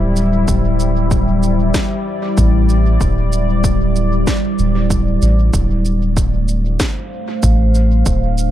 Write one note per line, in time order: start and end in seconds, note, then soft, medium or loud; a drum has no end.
0.00 0.46 D1 loud
0.00 5.54 G3 medium
0.00 5.53 E4 medium
0.00 5.53 C5 medium
0.00 0.85 E5 medium
0.16 shaker soft
0.48 1.72 D1 loud
0.48 kick medium
0.48 shaker soft
0.67 7.96 D5 medium
0.80 shaker soft
1.11 kick loud
1.11 shaker medium
1.43 shaker soft
1.74 kick medium
1.74 snare medium
1.74 shaker soft
2.38 2.98 A1 loud
2.38 kick loud
2.38 shaker soft
2.69 shaker soft
3.01 4.25 D1 loud
3.01 kick loud
3.01 shaker medium
3.32 shaker soft
3.64 kick loud
3.64 shaker medium
3.96 shaker soft
4.27 kick medium
4.27 snare medium
4.27 shaker medium
4.59 5.19 D1 medium
4.59 shaker soft
4.90 kick loud
4.90 shaker medium
5.22 5.50 A1 medium
5.22 shaker soft
5.53 6.77 D1 loud
5.53 8.51 A3 medium
5.53 kick loud
5.53 shaker medium
5.80 8.51 D4 loud
5.85 8.51 C5 medium
5.85 shaker soft
6.17 8.51 F5 medium
6.17 kick loud
6.17 shaker medium
6.48 shaker soft
6.80 kick medium
6.80 snare medium
6.80 shaker medium
7.43 8.04 A1 medium
7.43 kick loud
7.43 shaker medium
7.75 shaker soft
8.06 8.51 D1 loud
8.06 kick loud
8.06 shaker medium
8.38 shaker soft